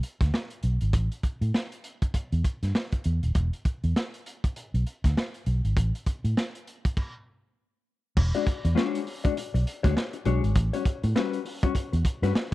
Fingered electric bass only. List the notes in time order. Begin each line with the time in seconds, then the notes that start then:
0.21 D2
0.64 B1
0.82 G#1
0.94 A1
1.24 muted fingered electric bass stroke
1.41 A2
2.33 E2
2.63 G2
3.06 E2
3.23 D#1
3.35 E1
3.65 muted fingered electric bass stroke
3.84 E2
4.74 B1
5.05 D2
5.47 B1
5.65 G#1
5.77 A1
6.07 muted fingered electric bass stroke
6.24 A2
8.17 E1
8.47 muted fingered electric bass stroke
8.65 E2
9.54 B1
9.84 D2
10.26 B1
10.44 G#1
10.56 A1
10.86 muted fingered electric bass stroke
11.04 A2
11.93 E2
12.22 G2